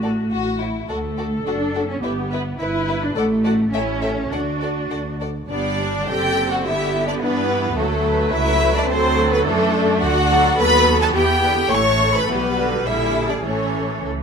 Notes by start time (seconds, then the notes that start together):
Already playing: A1 A3 F#4
0.02 F#4 A4 D5
0.31 A1 F#4
0.60 E4 C#5
0.88 D2 A3 F#4 A4 D5
1.17 F#4 A4 D5
1.46 F#1 D4 F#4 A4 D5
1.75 F#4 A4 D5
1.89 C#4
2.03 G1 B3 E4 G4 B4 E5
2.31 E4 B4 E5
2.59 G1 E4 B4 E5
2.87 E4 B4 E5
3.02 D4
3.16 A1 A3 A4 D5 F#5
3.45 F#4 A4 D5 F#5
3.73 A1 C#4 E4 A4 E5 G5
4.02 A4 E5 G5
4.32 D2 D4 F#4 A4 D5 F#5
4.62 A4 D5 F#5
4.91 D2 A4 D5 F#5
5.20 A4 D5 F#5
5.49 G1 G3 B3 D4 D5
5.79 D4
6.07 F#1 D3 C4 G4 A4 G5
6.51 F#4 F#5
6.65 G1 B3 E4 G4 E5
7.08 D4 D5
7.21 G2 E3 B3 D4 B4
7.50 E4
7.77 D2 F#3 A3 F#4 A4
8.05 B4
8.34 C#2 A3 E4 E5
8.75 D4 D5
8.89 D2 F#3 A3 C4 A4 C5
9.31 B3 B4
9.45 F#2 E3 A3 D4 A4
9.75 D3
10.02 D2 D3 F#4 F#5
10.30 F#3 A4
10.58 D#2 F#3 B3 B4 B5
11.01 A4 A5
11.15 E2 E3 G4 G5
11.43 D3 B4
11.71 A1 E3 A3 A4 C#5 C#6
12.14 B4 B5
12.28 B1 E3 G3 B3 G4 B4
12.57 D3 F#4
12.85 A#1 D3 E4 G#4 E5
13.30 D4 D5
13.45 A1 E3 A3 C#4 A4 C#5
14.04 C#2 A4